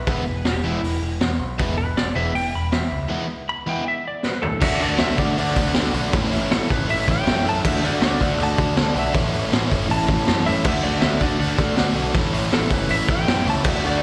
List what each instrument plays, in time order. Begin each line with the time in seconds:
0.07 picked electric bass E1, overdriven electric guitar E3 G#3 B3 E4, kick, open hi-hat
0.11 electric slide guitar B4
0.28 picked electric bass E1
0.45 picked electric bass E1, electric slide guitar G4, snare, open hi-hat
0.55 snare
0.64 picked electric bass E1, overdriven electric guitar E3 G#3 B3 E4, electric slide guitar E4
0.83 picked electric bass E1, open hi-hat
1.02 picked electric bass E1
1.21 picked electric bass E2, snare, open hi-hat
1.39 picked electric bass B1
1.59 picked electric bass E1, overdriven electric guitar E3 G#3 B3 E4, kick, open hi-hat
1.78 picked electric bass E1, electric slide guitar B4
1.96 picked electric bass E1, electric slide guitar D5, snare, open hi-hat
2.16 picked electric bass E1, overdriven electric guitar E3 G#3 B3 E4, electric slide guitar E5
2.35 picked electric bass E1, electric slide guitar G5, open hi-hat
2.55 picked electric bass E1, electric slide guitar B5
2.72 picked electric bass E2, electric slide guitar E5, snare, open hi-hat
2.92 picked electric bass C#2
3.10 overdriven electric guitar E3 G#3 B3 E4
3.49 electric slide guitar B5
3.66 overdriven electric guitar E3 G#3 B3 E4, electric slide guitar G5
3.88 electric slide guitar E5
4.08 electric slide guitar D5
4.23 electric slide guitar B4, snare
4.42 electric slide guitar A4, floor tom
4.61 picked electric bass D2, overdriven electric guitar D3 A3 D4 F#4, electric slide guitar E5, kick, crash
4.72 snare
4.80 picked electric bass D2, overdriven electric guitar D3 A3 D4 F#4, electric slide guitar D5, open hi-hat
4.98 picked electric bass D2, overdriven electric guitar D3 A3 D4 F#4, electric slide guitar E5, snare, open hi-hat
5.17 picked electric bass D2, overdriven electric guitar D3 A3 D4 F#4, electric slide guitar D5, kick, open hi-hat
5.38 picked electric bass D2, overdriven electric guitar D3 A3 D4 F#4, electric slide guitar D5, open hi-hat
5.56 picked electric bass D2, overdriven electric guitar D3 A3 D4 F#4, kick, snare, open hi-hat
5.74 picked electric bass D2, overdriven electric guitar D3 A3 D4 F#4, snare, open hi-hat
5.94 picked electric bass B1, overdriven electric guitar D3 A3 D4 F#4, open hi-hat
6.12 picked electric bass A1, overdriven electric guitar A2 E3 A3 C#4 E4, kick, open hi-hat
6.22 snare
6.30 picked electric bass A1, overdriven electric guitar A2 E3 A3 C#4 E4, open hi-hat
6.51 picked electric bass A1, overdriven electric guitar A2 E3 A3 C#4 E4, electric slide guitar A4, snare, open hi-hat
6.69 picked electric bass F#1, overdriven electric guitar A2 E3 A3 C#4 E4, electric slide guitar B4, kick, open hi-hat
6.87 picked electric bass A1, overdriven electric guitar A2 E3 A3 C#4 E4, electric slide guitar E5, open hi-hat
7.06 picked electric bass A1, overdriven electric guitar A2 E3 A3 C#4 E4, kick, snare, open hi-hat
7.10 electric slide guitar G5
7.25 picked electric bass F#2, overdriven electric guitar A2 E3 A3 C#4 E4, snare, open hi-hat
7.45 picked electric bass F#2, overdriven electric guitar A2 E3 A3 C#4 E4, electric slide guitar A5, open hi-hat
7.65 picked electric bass D2, overdriven electric guitar D3 A3 D4 F#4, electric slide guitar E5, kick, crash
7.75 snare
7.83 picked electric bass D2, overdriven electric guitar D3 A3 D4 F#4, electric slide guitar D5, open hi-hat
8.01 picked electric bass D2, overdriven electric guitar D3 A3 D4 F#4, electric slide guitar D5, snare, open hi-hat
8.21 picked electric bass D2, overdriven electric guitar D3 A3 D4 F#4, kick, open hi-hat
8.38 picked electric bass D2, overdriven electric guitar D3 A3 D4, open hi-hat
8.42 overdriven electric guitar F#4, electric slide guitar A5
8.58 picked electric bass D2, overdriven electric guitar D3 A3 D4 F#4, kick, open hi-hat
8.75 picked electric bass D2, overdriven electric guitar D3 A3 D4 F#4, snare, open hi-hat
8.94 picked electric bass B1, overdriven electric guitar D3 A3 D4 F#4, open hi-hat
8.99 electric slide guitar E5
9.13 picked electric bass A1, overdriven electric guitar A2 E3 A3 C#4 E4, kick, open hi-hat
9.31 picked electric bass A1, overdriven electric guitar A2 E3 A3 C#4 E4, open hi-hat
9.51 picked electric bass A1, overdriven electric guitar A2 E3 A3 C#4 E4, snare, open hi-hat
9.68 overdriven electric guitar A2 E3 A3 C#4 E4, kick, open hi-hat
9.72 picked electric bass F#1
9.88 picked electric bass A1, overdriven electric guitar A2 E3 A3 C#4 E4, electric slide guitar A5, open hi-hat
10.08 picked electric bass A1, overdriven electric guitar A2 E3 A3 C#4 E4, kick, open hi-hat
10.26 picked electric bass F#2, overdriven electric guitar A2 E3 A3 C#4 E4, snare, open hi-hat
10.44 picked electric bass F#2, overdriven electric guitar A2 E3 A3 C#4 E4, electric slide guitar E5, open hi-hat
10.64 picked electric bass D2, overdriven electric guitar D3 A3 D4 F#4, electric slide guitar E5, kick, crash
10.83 picked electric bass D2, overdriven electric guitar D3 A3 D4 F#4, electric slide guitar D5, open hi-hat
11.01 picked electric bass D2, overdriven electric guitar D3 A3 D4 F#4, electric slide guitar E5, snare, open hi-hat
11.20 picked electric bass D2, overdriven electric guitar D3 A3 D4 F#4, electric slide guitar D5, kick, open hi-hat
11.39 picked electric bass D2, overdriven electric guitar D3 A3 D4 F#4, electric slide guitar D5, open hi-hat
11.57 picked electric bass D2, overdriven electric guitar D3 A3 D4 F#4, kick, snare, open hi-hat
11.76 picked electric bass D2, overdriven electric guitar D3 A3 D4 F#4, snare, open hi-hat
11.94 picked electric bass B1, overdriven electric guitar D3 A3 D4 F#4, open hi-hat
12.13 picked electric bass A1, overdriven electric guitar A2 E3 A3 C#4 E4, kick, open hi-hat
12.32 picked electric bass A1, overdriven electric guitar A2 E3 A3 C#4 E4, open hi-hat
12.51 picked electric bass A1, overdriven electric guitar A2 E3 A3 C#4 E4, electric slide guitar A4, snare, open hi-hat
12.69 picked electric bass F#1, overdriven electric guitar A2 E3 A3 C#4 E4, kick, open hi-hat
12.74 electric slide guitar B4
12.88 picked electric bass A1, overdriven electric guitar A2 E3 A3 C#4 E4, electric slide guitar E5, open hi-hat
13.08 picked electric bass A1, overdriven electric guitar A2 E3 A3 C#4 E4, electric slide guitar G5, kick, snare, open hi-hat
13.26 picked electric bass F#2, overdriven electric guitar A2 E3 A3 C#4 E4, snare, open hi-hat
13.44 picked electric bass C#2, overdriven electric guitar A2 E3 A3 C#4 E4, open hi-hat
13.50 electric slide guitar A5
13.64 picked electric bass D2, overdriven electric guitar D3 A3 D4 F#4, kick, crash
13.68 electric slide guitar E5
13.74 snare
13.84 picked electric bass D2, overdriven electric guitar D3 A3 D4 F#4, electric slide guitar D5, open hi-hat